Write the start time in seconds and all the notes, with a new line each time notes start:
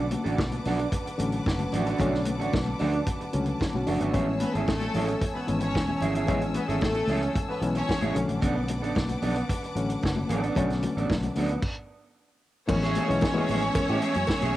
Already playing: B1 D3 F#3 A3 C#4 B4 F#5 A5 D6
0.11 muted clean electric guitar stroke, closed hi-hat, muted conga, high conga
0.24 A1 D4 F#4 A4, closed hi-hat
0.38 B1, kick, snare, high conga
0.52 muted clean electric guitar stroke, closed hi-hat, high conga
0.65 B1 D4 F#4 A4, open hi-hat, muted conga, low conga
0.79 muted clean electric guitar stroke, closed hi-hat
0.92 muted clean electric guitar stroke, kick, closed hi-hat, muted conga
1.06 muted clean electric guitar stroke, closed hi-hat
1.18 A1 D3 F#3 A3 C#4, closed hi-hat, muted conga
1.32 muted clean electric guitar stroke, closed hi-hat
1.46 F#1, muted clean electric guitar stroke, kick, snare, muted conga
1.59 muted clean electric guitar stroke, closed hi-hat, high conga
1.72 A1 D4 F#4 A4, closed hi-hat, low conga
1.86 D4 F#4 A4, closed hi-hat
1.99 B1 D3 F#3 A3 C#4 D4 F#4 A4, kick, closed hi-hat, muted conga, low conga
2.13 muted clean electric guitar stroke, snare
2.25 muted clean electric guitar stroke, closed hi-hat, high conga
2.40 A1 D4 F#4 A4, closed hi-hat
2.53 B1, kick, snare, muted conga, high conga
2.66 muted clean electric guitar stroke, high conga
2.79 D2 D4 F#4 A4, open hi-hat, low conga
2.93 muted clean electric guitar stroke, closed hi-hat
3.07 muted clean electric guitar stroke, kick, closed hi-hat, muted conga
3.21 muted clean electric guitar stroke, closed hi-hat
3.33 C#2 D3 F#3 A3 C#4, closed hi-hat, muted conga
3.46 muted clean electric guitar stroke, closed hi-hat
3.60 muted clean electric guitar stroke, kick, snare, muted conga
3.73 B1 C#4 F#4, muted clean electric guitar stroke, high conga
3.87 F#1 A3 D4 F#4 A4, open hi-hat, muted conga, low conga
4.00 G#1 F#3 B3 D4 F#4 A4, closed hi-hat
4.13 A1 E3 G#3 B3 C#4 E4 G#4 C#5 G#5 E6, kick, closed hi-hat, muted conga, low conga
4.27 muted clean electric guitar stroke
4.40 B3 B4, muted clean electric guitar stroke, closed hi-hat, muted conga, high conga
4.55 G#1 A3 C#4 E4 G#4 A4, closed hi-hat
4.67 A1 A3 A4, kick, snare, muted conga, high conga
4.80 muted clean electric guitar stroke, closed hi-hat, high conga
4.94 A1 C#4 E4 G#4, open hi-hat, low conga
5.08 muted clean electric guitar stroke, closed hi-hat
5.21 muted clean electric guitar stroke, kick, closed hi-hat, muted conga
5.34 B3 B4, muted clean electric guitar stroke
5.48 G#1 E3 G#3 B3 C#4, closed hi-hat, muted conga
5.60 C#4 C#5, muted clean electric guitar stroke, closed hi-hat
5.74 E1, muted clean electric guitar stroke, kick, snare, muted conga
5.87 muted clean electric guitar stroke, high conga
6.01 G#1 C#4 E4 G#4, closed hi-hat, low conga
6.14 C#4 E4 G#4, closed hi-hat
6.27 A1 E3 G#3 B3 C#4 E4 G#4, kick, closed hi-hat, muted conga, low conga
6.41 muted clean electric guitar stroke, closed hi-hat
6.54 B3 B4, muted clean electric guitar stroke, closed hi-hat, high conga
6.68 G#1 A3 C#4 E4 G#4 A4, closed hi-hat
6.81 A1 A3 A4, kick, snare, muted conga, high conga
6.95 muted clean electric guitar stroke, closed hi-hat, high conga
7.07 C#2 C#4 E4 G#4, open hi-hat, muted conga, low conga
7.22 muted clean electric guitar stroke, closed hi-hat
7.35 muted clean electric guitar stroke, kick, closed hi-hat
7.48 B3 B4, muted clean electric guitar stroke
7.61 B1 E3 G#3 B3 C#4, closed hi-hat, muted conga
7.75 C#4 C#5, muted clean electric guitar stroke, closed hi-hat
7.88 muted clean electric guitar stroke, kick, snare, muted conga
8.01 A1 C#4 E4 G#4, closed hi-hat, high conga
8.15 B1 D3 F#3 A3 C#4 B4 F#5 D6, muted clean electric guitar stroke, closed hi-hat, muted conga, low conga
8.28 A1, muted clean electric guitar stroke, closed hi-hat
8.41 B1 B3 D4 A4, kick, closed hi-hat, muted conga, low conga
8.55 muted clean electric guitar stroke
8.68 muted clean electric guitar stroke, closed hi-hat, high conga
8.82 A1 B3 D4 A4, closed hi-hat
8.95 B1, kick, snare, high conga
9.08 muted clean electric guitar stroke, closed hi-hat, high conga
9.22 B1 B3 D4 A4, open hi-hat, muted conga, low conga
9.36 muted clean electric guitar stroke, closed hi-hat
9.49 muted clean electric guitar stroke, kick, closed hi-hat, muted conga
9.63 muted clean electric guitar stroke, closed hi-hat
9.75 A1 D3 F#3 A3 C#4, closed hi-hat
9.89 muted clean electric guitar stroke, closed hi-hat
10.02 F#1, muted clean electric guitar stroke, kick, snare, muted conga
10.15 muted clean electric guitar stroke, high conga
10.29 A1 B3 D4 A4, closed hi-hat, muted conga, low conga
10.43 B3 D4 A4, closed hi-hat
10.55 B1 D3 F#3 A3 B3 C#4 D4 A4, kick, closed hi-hat, muted conga, low conga
10.69 muted clean electric guitar stroke, snare, closed hi-hat
10.83 muted clean electric guitar stroke, closed hi-hat, muted conga, high conga
10.97 A1 B3 D4 A4, closed hi-hat
11.10 B1, kick, snare, high conga
11.23 muted clean electric guitar stroke, closed hi-hat, high conga
11.36 D2 B3 D4 A4, open hi-hat, low conga
11.49 muted clean electric guitar stroke, closed hi-hat
11.62 kick, crash
12.68 A1 E3 G#3 B3 C#4 C#5 G#5 A5 E6, muted clean electric guitar stroke, kick, crash, cowbell, muted conga, low conga
12.82 A3 C#4 G#4, snare, closed hi-hat
12.95 A3 C#4 G#4, closed hi-hat, muted conga, high conga
13.08 B1 E3 G#3 B3 C#4, muted clean electric guitar stroke, closed hi-hat
13.21 muted clean electric guitar stroke, kick, snare, cowbell, muted conga, high conga
13.34 E3 G#3 B3 C#4 G#4, high conga
13.38 A3 C#4
13.48 A1 A3 C#4 G#4, open hi-hat, muted conga, low conga
13.62 muted clean electric guitar stroke, closed hi-hat
13.75 muted fingered electric bass stroke, muted clean electric guitar stroke, kick, closed hi-hat, cowbell, muted conga
13.89 A2 A3 C#4 G#4
14.02 A3 C#4 G#4, closed hi-hat, muted conga
14.14 F#2, muted clean electric guitar stroke, closed hi-hat, high conga
14.27 muted clean electric guitar stroke, kick, snare, cowbell, muted conga
14.41 B1 A3 C#4 G#4, closed hi-hat, high conga